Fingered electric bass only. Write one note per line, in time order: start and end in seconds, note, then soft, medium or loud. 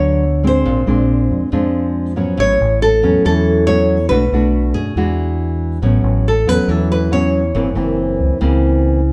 0.00 0.62 D2 medium
0.66 0.86 A#1 medium
0.88 1.28 A#1 medium
1.31 1.41 F2 medium
1.53 2.35 F2 medium
2.39 2.59 A1 medium
2.61 3.01 A1 medium
3.03 3.13 E2 medium
3.26 4.07 E2 medium
4.10 4.31 B1 medium
4.32 4.72 B1 medium
4.75 4.85 F#2 medium
4.96 5.79 E2 medium
5.83 6.03 A1 medium
6.04 6.44 A1 medium
6.47 6.57 E2 medium
6.68 7.51 E2 medium
7.55 7.75 F#1 medium
7.76 8.17 F#1 medium
8.20 8.30 C#2 medium
8.42 9.13 C#2 medium